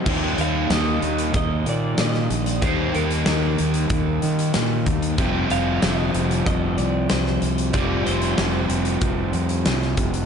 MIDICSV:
0, 0, Header, 1, 6, 480
1, 0, Start_track
1, 0, Tempo, 640342
1, 43, Time_signature, 4, 2, 24, 8
1, 7689, End_track
2, 0, Start_track
2, 0, Title_t, "Clean electric guitar"
2, 0, Program_c, 0, 27
2, 308, Note_on_c, 0, 77, 89
2, 539, Note_off_c, 0, 77, 0
2, 542, Note_on_c, 0, 75, 84
2, 1016, Note_off_c, 0, 75, 0
2, 1025, Note_on_c, 0, 75, 96
2, 1262, Note_off_c, 0, 75, 0
2, 1268, Note_on_c, 0, 74, 88
2, 1500, Note_off_c, 0, 74, 0
2, 1503, Note_on_c, 0, 75, 98
2, 1848, Note_off_c, 0, 75, 0
2, 1848, Note_on_c, 0, 74, 98
2, 1972, Note_on_c, 0, 72, 91
2, 1988, Note_off_c, 0, 74, 0
2, 2211, Note_off_c, 0, 72, 0
2, 2214, Note_on_c, 0, 70, 74
2, 3140, Note_off_c, 0, 70, 0
2, 4134, Note_on_c, 0, 77, 93
2, 4361, Note_off_c, 0, 77, 0
2, 4364, Note_on_c, 0, 75, 89
2, 4841, Note_off_c, 0, 75, 0
2, 4850, Note_on_c, 0, 75, 95
2, 5076, Note_off_c, 0, 75, 0
2, 5079, Note_on_c, 0, 74, 87
2, 5318, Note_off_c, 0, 74, 0
2, 5321, Note_on_c, 0, 72, 88
2, 5796, Note_off_c, 0, 72, 0
2, 5799, Note_on_c, 0, 74, 94
2, 6036, Note_off_c, 0, 74, 0
2, 6039, Note_on_c, 0, 72, 75
2, 6970, Note_off_c, 0, 72, 0
2, 7689, End_track
3, 0, Start_track
3, 0, Title_t, "Overdriven electric guitar"
3, 0, Program_c, 1, 29
3, 54, Note_on_c, 1, 55, 89
3, 1969, Note_off_c, 1, 55, 0
3, 1972, Note_on_c, 1, 55, 88
3, 3889, Note_off_c, 1, 55, 0
3, 3907, Note_on_c, 1, 65, 90
3, 5800, Note_off_c, 1, 65, 0
3, 5823, Note_on_c, 1, 65, 98
3, 7689, Note_off_c, 1, 65, 0
3, 7689, End_track
4, 0, Start_track
4, 0, Title_t, "Overdriven electric guitar"
4, 0, Program_c, 2, 29
4, 41, Note_on_c, 2, 51, 81
4, 55, Note_on_c, 2, 58, 89
4, 66, Note_on_c, 2, 63, 88
4, 70, Note_on_c, 2, 67, 90
4, 1949, Note_off_c, 2, 51, 0
4, 1956, Note_off_c, 2, 58, 0
4, 1960, Note_on_c, 2, 51, 87
4, 1962, Note_off_c, 2, 63, 0
4, 1974, Note_on_c, 2, 58, 86
4, 1981, Note_on_c, 2, 63, 90
4, 1984, Note_off_c, 2, 67, 0
4, 1987, Note_on_c, 2, 67, 94
4, 3868, Note_off_c, 2, 51, 0
4, 3875, Note_off_c, 2, 58, 0
4, 3879, Note_off_c, 2, 63, 0
4, 3883, Note_on_c, 2, 53, 84
4, 3891, Note_on_c, 2, 55, 83
4, 3897, Note_on_c, 2, 60, 101
4, 3904, Note_off_c, 2, 67, 0
4, 3907, Note_on_c, 2, 67, 96
4, 5788, Note_off_c, 2, 53, 0
4, 5803, Note_on_c, 2, 53, 86
4, 5808, Note_off_c, 2, 55, 0
4, 5811, Note_on_c, 2, 55, 82
4, 5819, Note_off_c, 2, 60, 0
4, 5822, Note_on_c, 2, 60, 93
4, 5824, Note_off_c, 2, 67, 0
4, 5827, Note_on_c, 2, 67, 84
4, 7689, Note_off_c, 2, 53, 0
4, 7689, Note_off_c, 2, 55, 0
4, 7689, Note_off_c, 2, 60, 0
4, 7689, Note_off_c, 2, 67, 0
4, 7689, End_track
5, 0, Start_track
5, 0, Title_t, "Fingered electric bass"
5, 0, Program_c, 3, 33
5, 45, Note_on_c, 3, 39, 88
5, 261, Note_off_c, 3, 39, 0
5, 286, Note_on_c, 3, 39, 80
5, 501, Note_off_c, 3, 39, 0
5, 524, Note_on_c, 3, 39, 81
5, 740, Note_off_c, 3, 39, 0
5, 771, Note_on_c, 3, 39, 82
5, 984, Note_off_c, 3, 39, 0
5, 1008, Note_on_c, 3, 39, 87
5, 1223, Note_off_c, 3, 39, 0
5, 1246, Note_on_c, 3, 46, 89
5, 1461, Note_off_c, 3, 46, 0
5, 1485, Note_on_c, 3, 46, 82
5, 1701, Note_off_c, 3, 46, 0
5, 1728, Note_on_c, 3, 34, 85
5, 1943, Note_off_c, 3, 34, 0
5, 1969, Note_on_c, 3, 39, 92
5, 2183, Note_off_c, 3, 39, 0
5, 2213, Note_on_c, 3, 39, 85
5, 2426, Note_off_c, 3, 39, 0
5, 2452, Note_on_c, 3, 39, 84
5, 2665, Note_off_c, 3, 39, 0
5, 2699, Note_on_c, 3, 39, 84
5, 2909, Note_off_c, 3, 39, 0
5, 2921, Note_on_c, 3, 39, 85
5, 3139, Note_off_c, 3, 39, 0
5, 3173, Note_on_c, 3, 51, 84
5, 3385, Note_off_c, 3, 51, 0
5, 3416, Note_on_c, 3, 46, 84
5, 3627, Note_off_c, 3, 46, 0
5, 3651, Note_on_c, 3, 39, 89
5, 3864, Note_off_c, 3, 39, 0
5, 3886, Note_on_c, 3, 29, 93
5, 4101, Note_off_c, 3, 29, 0
5, 4129, Note_on_c, 3, 29, 84
5, 4343, Note_off_c, 3, 29, 0
5, 4372, Note_on_c, 3, 29, 86
5, 4585, Note_off_c, 3, 29, 0
5, 4607, Note_on_c, 3, 29, 84
5, 4822, Note_off_c, 3, 29, 0
5, 4848, Note_on_c, 3, 29, 87
5, 5062, Note_off_c, 3, 29, 0
5, 5087, Note_on_c, 3, 36, 91
5, 5302, Note_off_c, 3, 36, 0
5, 5333, Note_on_c, 3, 36, 85
5, 5545, Note_off_c, 3, 36, 0
5, 5563, Note_on_c, 3, 36, 89
5, 5779, Note_off_c, 3, 36, 0
5, 5805, Note_on_c, 3, 29, 96
5, 6020, Note_off_c, 3, 29, 0
5, 6046, Note_on_c, 3, 29, 82
5, 6261, Note_off_c, 3, 29, 0
5, 6282, Note_on_c, 3, 29, 88
5, 6498, Note_off_c, 3, 29, 0
5, 6516, Note_on_c, 3, 29, 85
5, 6735, Note_off_c, 3, 29, 0
5, 6760, Note_on_c, 3, 29, 85
5, 6977, Note_off_c, 3, 29, 0
5, 6998, Note_on_c, 3, 41, 86
5, 7216, Note_off_c, 3, 41, 0
5, 7240, Note_on_c, 3, 36, 81
5, 7457, Note_off_c, 3, 36, 0
5, 7477, Note_on_c, 3, 29, 83
5, 7689, Note_off_c, 3, 29, 0
5, 7689, End_track
6, 0, Start_track
6, 0, Title_t, "Drums"
6, 46, Note_on_c, 9, 36, 105
6, 46, Note_on_c, 9, 49, 102
6, 121, Note_off_c, 9, 36, 0
6, 121, Note_off_c, 9, 49, 0
6, 286, Note_on_c, 9, 42, 69
6, 361, Note_off_c, 9, 42, 0
6, 526, Note_on_c, 9, 42, 68
6, 529, Note_on_c, 9, 38, 110
6, 601, Note_off_c, 9, 42, 0
6, 604, Note_off_c, 9, 38, 0
6, 768, Note_on_c, 9, 42, 68
6, 843, Note_off_c, 9, 42, 0
6, 888, Note_on_c, 9, 42, 68
6, 963, Note_off_c, 9, 42, 0
6, 1004, Note_on_c, 9, 42, 66
6, 1006, Note_on_c, 9, 36, 106
6, 1079, Note_off_c, 9, 42, 0
6, 1081, Note_off_c, 9, 36, 0
6, 1246, Note_on_c, 9, 42, 69
6, 1321, Note_off_c, 9, 42, 0
6, 1481, Note_on_c, 9, 42, 69
6, 1483, Note_on_c, 9, 38, 106
6, 1556, Note_off_c, 9, 42, 0
6, 1558, Note_off_c, 9, 38, 0
6, 1605, Note_on_c, 9, 38, 31
6, 1680, Note_off_c, 9, 38, 0
6, 1727, Note_on_c, 9, 42, 69
6, 1802, Note_off_c, 9, 42, 0
6, 1845, Note_on_c, 9, 42, 75
6, 1920, Note_off_c, 9, 42, 0
6, 1965, Note_on_c, 9, 42, 67
6, 1966, Note_on_c, 9, 36, 104
6, 2040, Note_off_c, 9, 42, 0
6, 2041, Note_off_c, 9, 36, 0
6, 2207, Note_on_c, 9, 42, 72
6, 2282, Note_off_c, 9, 42, 0
6, 2328, Note_on_c, 9, 42, 68
6, 2403, Note_off_c, 9, 42, 0
6, 2441, Note_on_c, 9, 42, 71
6, 2444, Note_on_c, 9, 38, 109
6, 2516, Note_off_c, 9, 42, 0
6, 2519, Note_off_c, 9, 38, 0
6, 2687, Note_on_c, 9, 42, 66
6, 2762, Note_off_c, 9, 42, 0
6, 2802, Note_on_c, 9, 42, 67
6, 2877, Note_off_c, 9, 42, 0
6, 2921, Note_on_c, 9, 42, 64
6, 2925, Note_on_c, 9, 36, 104
6, 2995, Note_off_c, 9, 42, 0
6, 3000, Note_off_c, 9, 36, 0
6, 3165, Note_on_c, 9, 42, 64
6, 3240, Note_off_c, 9, 42, 0
6, 3289, Note_on_c, 9, 42, 61
6, 3364, Note_off_c, 9, 42, 0
6, 3401, Note_on_c, 9, 42, 67
6, 3403, Note_on_c, 9, 38, 102
6, 3476, Note_off_c, 9, 42, 0
6, 3478, Note_off_c, 9, 38, 0
6, 3645, Note_on_c, 9, 42, 63
6, 3647, Note_on_c, 9, 36, 74
6, 3720, Note_off_c, 9, 42, 0
6, 3722, Note_off_c, 9, 36, 0
6, 3766, Note_on_c, 9, 42, 69
6, 3841, Note_off_c, 9, 42, 0
6, 3883, Note_on_c, 9, 42, 64
6, 3886, Note_on_c, 9, 36, 102
6, 3958, Note_off_c, 9, 42, 0
6, 3961, Note_off_c, 9, 36, 0
6, 4125, Note_on_c, 9, 42, 67
6, 4199, Note_off_c, 9, 42, 0
6, 4365, Note_on_c, 9, 42, 67
6, 4367, Note_on_c, 9, 38, 110
6, 4440, Note_off_c, 9, 42, 0
6, 4442, Note_off_c, 9, 38, 0
6, 4606, Note_on_c, 9, 42, 68
6, 4681, Note_off_c, 9, 42, 0
6, 4729, Note_on_c, 9, 42, 71
6, 4804, Note_off_c, 9, 42, 0
6, 4846, Note_on_c, 9, 36, 106
6, 4848, Note_on_c, 9, 42, 68
6, 4921, Note_off_c, 9, 36, 0
6, 4923, Note_off_c, 9, 42, 0
6, 5082, Note_on_c, 9, 42, 70
6, 5157, Note_off_c, 9, 42, 0
6, 5317, Note_on_c, 9, 42, 72
6, 5320, Note_on_c, 9, 38, 108
6, 5392, Note_off_c, 9, 42, 0
6, 5394, Note_off_c, 9, 38, 0
6, 5445, Note_on_c, 9, 38, 31
6, 5520, Note_off_c, 9, 38, 0
6, 5561, Note_on_c, 9, 42, 71
6, 5636, Note_off_c, 9, 42, 0
6, 5683, Note_on_c, 9, 42, 69
6, 5758, Note_off_c, 9, 42, 0
6, 5798, Note_on_c, 9, 42, 69
6, 5802, Note_on_c, 9, 36, 101
6, 5873, Note_off_c, 9, 42, 0
6, 5877, Note_off_c, 9, 36, 0
6, 6046, Note_on_c, 9, 42, 76
6, 6121, Note_off_c, 9, 42, 0
6, 6159, Note_on_c, 9, 42, 71
6, 6234, Note_off_c, 9, 42, 0
6, 6279, Note_on_c, 9, 42, 70
6, 6281, Note_on_c, 9, 38, 115
6, 6354, Note_off_c, 9, 42, 0
6, 6356, Note_off_c, 9, 38, 0
6, 6519, Note_on_c, 9, 42, 67
6, 6594, Note_off_c, 9, 42, 0
6, 6635, Note_on_c, 9, 42, 69
6, 6710, Note_off_c, 9, 42, 0
6, 6755, Note_on_c, 9, 42, 66
6, 6759, Note_on_c, 9, 36, 105
6, 6830, Note_off_c, 9, 42, 0
6, 6834, Note_off_c, 9, 36, 0
6, 6995, Note_on_c, 9, 42, 64
6, 7070, Note_off_c, 9, 42, 0
6, 7114, Note_on_c, 9, 42, 63
6, 7189, Note_off_c, 9, 42, 0
6, 7237, Note_on_c, 9, 42, 66
6, 7239, Note_on_c, 9, 38, 109
6, 7312, Note_off_c, 9, 42, 0
6, 7314, Note_off_c, 9, 38, 0
6, 7359, Note_on_c, 9, 38, 33
6, 7434, Note_off_c, 9, 38, 0
6, 7475, Note_on_c, 9, 42, 63
6, 7477, Note_on_c, 9, 36, 72
6, 7550, Note_off_c, 9, 42, 0
6, 7552, Note_off_c, 9, 36, 0
6, 7599, Note_on_c, 9, 42, 65
6, 7674, Note_off_c, 9, 42, 0
6, 7689, End_track
0, 0, End_of_file